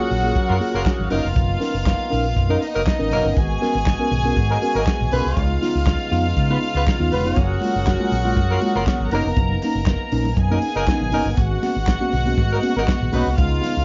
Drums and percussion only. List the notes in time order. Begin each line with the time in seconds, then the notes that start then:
0.11 open hi-hat
0.36 kick, closed hi-hat
0.61 open hi-hat
0.86 kick, snare, clap, closed hi-hat
1.10 open hi-hat
1.36 kick, closed hi-hat
1.61 snare, open hi-hat
1.86 kick, snare, clap, closed hi-hat
2.12 open hi-hat
2.36 kick, closed hi-hat
2.62 open hi-hat
2.87 kick, snare, clap, closed hi-hat
3.11 open hi-hat
3.37 kick, closed hi-hat
3.62 snare, open hi-hat
3.86 kick, snare, clap, closed hi-hat
4.12 open hi-hat
4.37 kick, closed hi-hat
4.62 open hi-hat
4.87 kick, snare, clap, closed hi-hat
5.11 open hi-hat
5.37 kick, closed hi-hat
5.63 snare, open hi-hat
5.87 kick, snare, clap, closed hi-hat
6.12 open hi-hat
6.37 kick, closed hi-hat
6.62 open hi-hat
6.87 kick, snare, clap, closed hi-hat
7.12 open hi-hat
7.36 kick, closed hi-hat, muted conga
7.62 open hi-hat, muted conga
7.87 kick, snare, clap, closed hi-hat, high conga
8.12 open hi-hat, muted conga
8.37 kick, closed hi-hat, low conga
8.62 open hi-hat, muted conga
8.87 kick, snare, clap, closed hi-hat, high conga
9.11 open hi-hat, high conga
9.36 kick, closed hi-hat, muted conga
9.62 snare, open hi-hat, muted conga
9.86 kick, snare, clap, closed hi-hat, high conga
10.12 open hi-hat
10.25 low conga
10.37 kick, closed hi-hat
10.62 open hi-hat, muted conga
10.87 kick, snare, clap, closed hi-hat, high conga
11.12 open hi-hat, high conga
11.37 kick, closed hi-hat, muted conga
11.63 snare, open hi-hat, muted conga
11.87 kick, snare, clap, closed hi-hat, high conga
12.13 open hi-hat
12.38 kick, closed hi-hat, low conga
12.63 open hi-hat, muted conga
12.88 kick, snare, clap, closed hi-hat, high conga
13.13 open hi-hat, high conga
13.38 kick, closed hi-hat, muted conga
13.64 snare, open hi-hat, muted conga